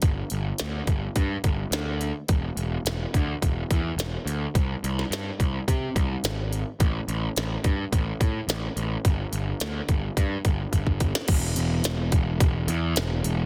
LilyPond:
<<
  \new Staff \with { instrumentName = "Picked electric bass" } { \clef bass \time 4/4 \key g \major \tempo 4 = 107 g,,8 g,,8 d,8 g,,8 g,8 g,,8 d,4 | e,,8 e,,8 e,,8 d,8 e,,8 e,8 e,,8 d,8 | c,8 c,8 g,8 c,8 c8 c,8 gis,,4 | a,,8 a,,8 a,,8 g,8 a,,8 a,8 a,,8 a,,8 |
g,,8 g,,8 d,8 g,,8 g,8 g,,8 g,,4 | e,,8 e,,8 e,,8 e,,8 e,,8 e,8 e,,8 e,,8 | }
  \new DrumStaff \with { instrumentName = "Drums" } \drummode { \time 4/4 <hho bd>8 hho8 <hho sn>8 <hho bd>8 <hho bd>8 <hho bd>8 <hho sn>8 hho8 | <hho bd>8 hho8 <hho sn>8 <hho bd>8 <hho bd>8 <hho bd>8 <hho sn>8 hho8 | <hho bd>8 hho16 sn16 <hho sn>8 <hho bd>8 <hho bd>8 <hho bd>8 <hho sn>8 hho8 | <hho bd>8 hho8 <hho sn>8 <hho bd>8 <hho bd>8 <hho bd>8 <hho sn>8 hho8 |
<hho bd>8 hho8 <hho sn>8 <hho bd>8 <hho bd>8 <hho bd>8 <hho bd>16 bd16 <hho bd>16 sn16 | <cymc hho bd>8 hho8 <hho sn>8 <hho bd>8 <hho bd>8 hho8 <hho sn>8 hho8 | }
>>